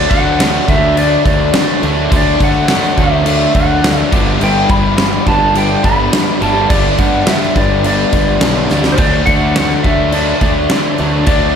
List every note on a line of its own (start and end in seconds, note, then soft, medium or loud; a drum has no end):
0.00 2.09 D3 medium
0.00 0.11 F#3 loud
0.00 0.11 A3 loud
0.00 0.11 D4 loud
0.00 0.11 D5 loud
0.10 0.58 D2 medium
0.10 0.38 D3 medium
0.10 0.39 F#3 medium
0.10 0.40 A3 medium
0.10 0.40 D4 medium
0.10 0.69 F#5 loud
0.10 kick medium
0.10 crash medium
0.39 0.67 D3 medium
0.39 0.67 F#3 medium
0.39 0.68 A3 medium
0.39 0.69 D4 medium
0.39 snare loud
0.39 crash medium
0.68 1.16 D2 medium
0.68 0.96 D3 medium
0.68 0.96 F#3 medium
0.68 0.96 A3 medium
0.68 0.98 D4 medium
0.68 0.98 E5 loud
0.68 kick medium
0.68 crash medium
0.97 1.24 D3 loud
0.97 1.25 F#3 loud
0.97 1.25 A3 loud
0.97 1.26 D4 loud
0.97 1.24 D5 medium
0.97 crash medium
1.25 1.49 D2 loud
1.25 1.53 D3 medium
1.25 1.53 F#3 medium
1.25 1.53 A3 medium
1.25 1.55 D4 medium
1.25 1.80 D5 medium
1.25 kick medium
1.25 crash medium
1.53 1.82 D3 medium
1.53 1.82 F#3 medium
1.53 1.83 A3 medium
1.53 1.84 D4 loud
1.53 snare loud
1.53 crash medium
1.83 2.07 D2 medium
1.83 2.10 D3 medium
1.83 2.11 F#3 medium
1.83 2.12 A3 medium
1.83 2.13 D4 loud
1.83 crash medium
2.12 2.35 D2 loud
2.12 2.38 D3 loud
2.12 2.39 F#3 loud
2.12 2.40 A3 loud
2.12 2.41 D4 loud
2.12 kick loud
2.12 crash medium
2.16 2.43 D5 medium
2.39 2.68 D3 medium
2.39 2.64 D3 loud
2.39 2.69 F#3 medium
2.39 2.69 A3 medium
2.39 2.70 D4 medium
2.39 kick medium
2.39 crash medium
2.44 2.95 F#5 loud
2.68 2.97 D3 medium
2.68 2.97 F#3 medium
2.68 2.98 A3 medium
2.68 3.00 D4 medium
2.68 snare loud
2.68 crash medium
2.84 snare soft
2.97 3.45 D2 loud
2.97 3.24 D3 medium
2.97 3.24 F#3 medium
2.97 3.25 A3 medium
2.97 3.27 D4 medium
2.97 3.28 E5 loud
2.97 kick medium
2.97 crash medium
3.25 3.53 D3 loud
3.25 3.54 F#3 loud
3.25 3.54 A3 loud
3.25 3.56 D4 loud
3.25 crash medium
3.29 3.57 E5 medium
3.55 4.02 D2 medium
3.55 3.81 D3 medium
3.55 3.82 F#3 loud
3.55 3.83 A3 medium
3.55 3.84 D4 loud
3.55 3.97 F#5 loud
3.55 kick medium
3.55 crash medium
3.82 4.10 D3 medium
3.82 4.10 F#3 medium
3.82 4.10 A3 medium
3.82 4.13 D4 loud
3.82 snare loud
3.82 crash medium
3.97 4.08 E5 loud
4.12 4.36 G1 medium
4.12 4.39 G2 medium
4.12 4.39 D3 loud
4.12 4.40 G3 loud
4.12 4.41 B3 loud
4.12 4.42 D4 loud
4.12 kick loud
4.12 crash medium
4.40 4.65 G1 loud
4.40 4.68 G2 loud
4.40 4.68 D3 medium
4.40 4.70 G3 loud
4.40 4.70 B3 loud
4.40 4.71 D4 loud
4.40 4.71 G5 loud
4.40 crash medium
4.69 5.17 G1 medium
4.69 4.97 G2 medium
4.69 4.97 D3 medium
4.69 4.98 G3 medium
4.69 4.99 B3 medium
4.69 4.99 D4 medium
4.69 5.28 B5 loud
4.69 kick loud
4.69 crash medium
4.97 5.26 G2 medium
4.97 5.25 D3 medium
4.97 5.27 G3 medium
4.97 5.27 B3 medium
4.97 5.28 D4 medium
4.97 snare loud
4.97 crash medium
5.26 5.74 G1 medium
5.26 5.54 G2 medium
5.26 5.55 D3 medium
5.26 5.55 G3 medium
5.26 5.55 B3 medium
5.26 5.57 D4 medium
5.26 5.56 A5 loud
5.26 kick medium
5.26 crash medium
5.55 5.83 G2 loud
5.55 5.83 D3 loud
5.55 5.84 G3 loud
5.55 5.84 B3 loud
5.55 5.86 D4 loud
5.55 5.85 G5 loud
5.55 crash medium
5.84 6.08 G1 loud
5.84 6.11 G2 medium
5.84 6.12 D3 medium
5.84 6.12 G3 medium
5.84 6.13 B3 loud
5.84 6.14 D4 medium
5.84 6.38 B5 loud
5.84 kick medium
5.84 crash medium
6.12 6.39 G2 medium
6.12 6.40 D3 medium
6.12 6.40 G3 loud
6.12 6.41 B3 loud
6.12 6.42 D4 loud
6.12 snare loud
6.12 crash medium
6.40 6.65 G1 medium
6.40 6.68 G2 medium
6.40 6.69 D3 medium
6.40 6.69 G3 medium
6.40 6.70 B3 medium
6.40 6.71 D4 loud
6.40 6.71 A5 medium
6.40 crash medium
6.69 6.94 G1 loud
6.69 6.97 G2 loud
6.69 6.97 D3 loud
6.69 6.98 G3 loud
6.69 6.98 B3 loud
6.69 7.00 D4 loud
6.69 6.96 D5 medium
6.69 kick loud
6.69 crash medium
6.98 7.25 G2 medium
6.98 7.22 G2 loud
6.98 7.26 D3 medium
6.98 7.26 G3 medium
6.98 7.27 B3 medium
6.98 7.28 D4 medium
6.98 7.28 F#5 medium
6.98 kick medium
6.98 crash medium
7.26 7.55 G2 medium
7.26 7.55 D3 medium
7.26 7.56 G3 medium
7.26 7.56 B3 medium
7.26 7.57 D4 medium
7.26 7.57 E5 medium
7.26 snare loud
7.26 crash medium
7.42 snare soft
7.56 8.03 G1 loud
7.56 7.83 G2 medium
7.56 7.83 D3 medium
7.56 7.84 G3 medium
7.56 7.84 B3 medium
7.56 7.85 D4 medium
7.56 7.85 D5 medium
7.56 kick medium
7.56 crash medium
7.84 8.12 G2 loud
7.84 8.12 D3 loud
7.84 8.13 G3 loud
7.84 8.13 B3 loud
7.84 8.14 D4 loud
7.84 8.67 D5 medium
7.84 crash medium
8.12 8.37 G1 medium
8.12 8.40 G2 medium
8.12 8.41 D3 medium
8.12 8.41 G3 medium
8.12 8.42 B3 loud
8.12 8.43 D4 medium
8.12 kick medium
8.12 crash medium
8.41 8.67 B1 medium
8.41 8.68 G2 medium
8.41 8.68 D3 medium
8.41 8.69 G3 medium
8.41 8.69 B3 medium
8.41 8.71 D4 loud
8.41 snare loud
8.41 crash medium
8.69 8.96 D2 medium
8.69 8.96 G2 medium
8.69 8.96 D3 medium
8.69 8.97 G3 medium
8.69 8.97 B3 medium
8.69 8.99 D4 medium
8.69 snare medium
8.84 snare medium
8.92 8.99 C5 medium
8.97 9.22 D2 loud
8.97 9.25 D3 medium
8.97 9.26 F#3 loud
8.97 9.27 A3 loud
8.97 9.27 D4 loud
8.97 9.28 D5 loud
8.97 kick loud
8.97 crash medium
9.26 9.75 D2 medium
9.26 9.55 D3 medium
9.26 9.55 F#3 medium
9.26 9.56 A3 medium
9.26 9.56 D4 medium
9.26 9.85 F#5 loud
9.26 kick medium
9.26 crash medium
9.55 9.82 D3 medium
9.55 9.83 F#3 medium
9.55 9.84 A3 medium
9.55 9.85 D4 medium
9.55 snare loud
9.55 crash medium
9.70 snare soft
9.83 10.32 D2 medium
9.83 10.12 D3 medium
9.83 10.12 F#3 medium
9.83 10.13 A3 medium
9.83 10.14 D4 loud
9.83 10.13 E5 medium
9.83 kick medium
9.83 crash medium
10.12 10.40 D3 loud
10.12 10.41 F#3 loud
10.12 10.41 A3 loud
10.12 10.43 D4 loud
10.12 10.40 D5 medium
10.12 crash medium
10.41 10.65 D2 loud
10.41 10.69 D3 medium
10.41 10.70 F#3 medium
10.41 10.71 A3 loud
10.41 10.72 D4 medium
10.41 10.95 D5 medium
10.41 kick medium
10.41 crash medium
10.69 10.97 D3 medium
10.69 10.98 F#3 medium
10.69 10.99 A3 medium
10.69 11.00 D4 loud
10.69 snare loud
10.69 crash medium
10.98 11.23 D2 medium
10.98 11.26 D3 medium
10.98 11.27 F#3 medium
10.98 11.27 A3 loud
10.98 11.29 D4 loud
10.98 crash medium
11.26 11.51 D2 loud
11.26 11.55 D3 medium
11.26 11.56 F#3 loud
11.26 11.56 A3 loud
11.26 11.56 D4 loud
11.26 11.56 D5 medium
11.26 kick loud
11.26 crash medium